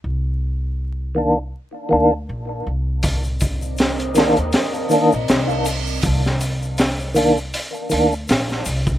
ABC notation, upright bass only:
X:1
M:4/4
L:1/16
Q:"Swing 16ths" 1/4=80
K:Cm
V:1 name="Upright bass" clef=bass
C,,8 z2 D,,2 B,,,2 C,,2- | C,,6- C,, E,, z3 B,,, C,,4 | C,,8 z2 D,,2 B,,,2 C,,2 |]